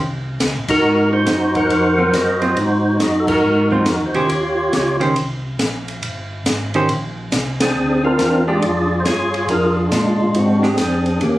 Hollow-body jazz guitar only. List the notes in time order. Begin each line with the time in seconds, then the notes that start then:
1.98 F#3 C4 F4
2.41 F#3 C4 F4
3.71 F#3 C4 F4
4.14 D#3 C#4 G4 C5
5.00 D#3 C#4 G4 C5
6.75 D#3 C#4 G4 C5
8.48 G#3 D4 G4
10.63 G#3 D4 G4